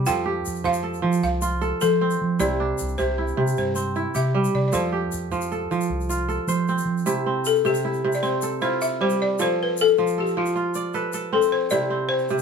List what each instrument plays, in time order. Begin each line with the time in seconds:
Already playing: kora C3 G3 C4 E4 G4
0.06 kora F3 A4, balafon G5, shaker
0.26 kora G4
0.45 fingered electric bass F2, shaker
0.55 shaker
0.64 fingered electric bass F2, kora F3, balafon F5, shaker
0.73 shaker
0.83 kora A4
0.94 shaker
1.02 kora F3, fingered electric bass F3
1.12 shaker
1.23 fingered electric bass C2, balafon F5, shaker
1.42 kora F4, shaker
1.61 kora A4, shaker
1.81 fingered electric bass F3, balafon A4, kora C5, shaker
2.01 kora C4
2.11 shaker
2.21 fingered electric bass F3
2.39 fingered electric bass C2, kora C3 E4, balafon D5, shaker
2.60 kora D4
2.78 fingered electric bass C2, shaker
2.88 shaker
2.98 fingered electric bass C2, kora C3, balafon C5, shaker
3.18 kora E4
3.28 shaker
3.37 kora C3, fingered electric bass C3
3.47 shaker
3.56 fingered electric bass G2, balafon C5, shaker
3.75 kora C4, shaker
3.95 kora E4, shaker
4.15 fingered electric bass C3, kora G4, balafon E5, shaker
4.34 kora G3
4.44 shaker
4.55 fingered electric bass C3, balafon D5
4.68 balafon D5
4.72 fingered electric bass F2, kora F3 A4, balafon C5, shaker
4.92 kora G4
5.12 fingered electric bass F2, shaker
5.32 fingered electric bass F2, kora F3, shaker
5.41 shaker
5.51 kora A4, shaker
5.71 kora F3, fingered electric bass F3, shaker
5.81 shaker
5.89 fingered electric bass C2
6.01 shaker
6.09 kora F4, shaker
6.28 kora A4, shaker
6.47 fingered electric bass F3, kora C5, shaker
6.68 kora C4, shaker
6.78 shaker
6.85 fingered electric bass F3
6.98 shaker
7.06 kora C3 E4, shaker
7.26 kora C4
7.45 balafon A4, shaker
7.55 shaker
7.65 kora C3, balafon G4, shaker
7.74 shaker
7.85 kora E4
7.93 shaker
8.04 kora C3
8.12 balafon D5, shaker
8.23 kora C4, balafon C5, shaker
8.42 kora A4, shaker
8.61 kora E4 F4, balafon C5, shaker
8.82 balafon E5, shaker
9.01 kora G3, balafon C5
9.10 shaker
9.22 balafon D5
9.39 kora F3 A4, balafon C5, shaker
9.63 balafon B4
9.77 shaker
9.81 balafon A4
9.87 shaker
9.97 kora F3, shaker
10.07 shaker
10.18 balafon G4, kora A4
10.27 shaker
10.37 kora F3, balafon F4
10.46 shaker
10.56 kora F4
10.74 kora D5, shaker
10.94 kora A4 B4, shaker
11.13 kora A4, shaker
11.33 kora C4, balafon A4
11.42 shaker
11.52 balafon C5
11.70 kora C3 E4, balafon D5, shaker
11.90 kora C4
12.09 balafon C5
12.19 shaker
12.29 kora C3, shaker
12.39 shaker